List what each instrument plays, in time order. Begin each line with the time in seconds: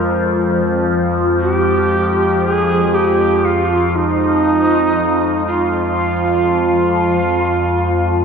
Already playing: synth drone F2 F3, singing bowl G#3, shakuhachi A#4
1.40 shakuhachi F#4
1.52 shakuhachi G4
2.42 shakuhachi G#4
2.94 shakuhachi G4
3.45 shakuhachi F4
3.95 shakuhachi D#4
5.46 shakuhachi F4